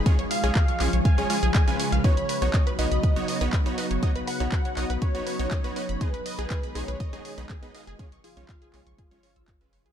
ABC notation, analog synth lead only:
X:1
M:4/4
L:1/8
Q:1/4=121
K:Blyd
V:1 name="Analog synth lead"
z e3 g4 | c3 d3 z2 | z f3 c4 | B3 c3 z2 |
z E3 E4 |]